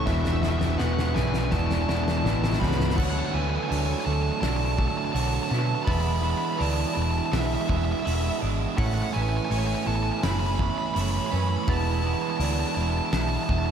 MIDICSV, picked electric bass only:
0, 0, Header, 1, 2, 480
1, 0, Start_track
1, 0, Tempo, 725514
1, 48, Time_signature, 4, 2, 24, 8
1, 9071, End_track
2, 0, Start_track
2, 0, Title_t, "Picked electric bass"
2, 0, Program_c, 0, 34
2, 51, Note_on_c, 0, 28, 94
2, 502, Note_off_c, 0, 28, 0
2, 528, Note_on_c, 0, 28, 92
2, 753, Note_off_c, 0, 28, 0
2, 766, Note_on_c, 0, 35, 82
2, 992, Note_off_c, 0, 35, 0
2, 1008, Note_on_c, 0, 28, 99
2, 1233, Note_off_c, 0, 28, 0
2, 1244, Note_on_c, 0, 28, 84
2, 1471, Note_off_c, 0, 28, 0
2, 1485, Note_on_c, 0, 33, 90
2, 1711, Note_off_c, 0, 33, 0
2, 1734, Note_on_c, 0, 37, 92
2, 1956, Note_off_c, 0, 37, 0
2, 1975, Note_on_c, 0, 38, 91
2, 2123, Note_off_c, 0, 38, 0
2, 2208, Note_on_c, 0, 38, 95
2, 2358, Note_off_c, 0, 38, 0
2, 2454, Note_on_c, 0, 38, 98
2, 2602, Note_off_c, 0, 38, 0
2, 2690, Note_on_c, 0, 38, 88
2, 2839, Note_off_c, 0, 38, 0
2, 2923, Note_on_c, 0, 35, 98
2, 3225, Note_off_c, 0, 35, 0
2, 3404, Note_on_c, 0, 35, 92
2, 3555, Note_off_c, 0, 35, 0
2, 3646, Note_on_c, 0, 47, 95
2, 3797, Note_off_c, 0, 47, 0
2, 3887, Note_on_c, 0, 28, 93
2, 4188, Note_off_c, 0, 28, 0
2, 4372, Note_on_c, 0, 38, 102
2, 4520, Note_off_c, 0, 38, 0
2, 4611, Note_on_c, 0, 28, 90
2, 4759, Note_off_c, 0, 28, 0
2, 4848, Note_on_c, 0, 35, 105
2, 4997, Note_off_c, 0, 35, 0
2, 5091, Note_on_c, 0, 28, 96
2, 5240, Note_off_c, 0, 28, 0
2, 5338, Note_on_c, 0, 28, 101
2, 5484, Note_off_c, 0, 28, 0
2, 5575, Note_on_c, 0, 32, 91
2, 5723, Note_off_c, 0, 32, 0
2, 5812, Note_on_c, 0, 33, 94
2, 5961, Note_off_c, 0, 33, 0
2, 6060, Note_on_c, 0, 33, 93
2, 6206, Note_off_c, 0, 33, 0
2, 6288, Note_on_c, 0, 33, 109
2, 6438, Note_off_c, 0, 33, 0
2, 6530, Note_on_c, 0, 33, 97
2, 6680, Note_off_c, 0, 33, 0
2, 6770, Note_on_c, 0, 30, 99
2, 7071, Note_off_c, 0, 30, 0
2, 7251, Note_on_c, 0, 30, 95
2, 7401, Note_off_c, 0, 30, 0
2, 7496, Note_on_c, 0, 42, 93
2, 7644, Note_off_c, 0, 42, 0
2, 7728, Note_on_c, 0, 28, 94
2, 8030, Note_off_c, 0, 28, 0
2, 8201, Note_on_c, 0, 38, 101
2, 8354, Note_off_c, 0, 38, 0
2, 8445, Note_on_c, 0, 28, 88
2, 8597, Note_off_c, 0, 28, 0
2, 8684, Note_on_c, 0, 35, 97
2, 8836, Note_off_c, 0, 35, 0
2, 8930, Note_on_c, 0, 28, 95
2, 9071, Note_off_c, 0, 28, 0
2, 9071, End_track
0, 0, End_of_file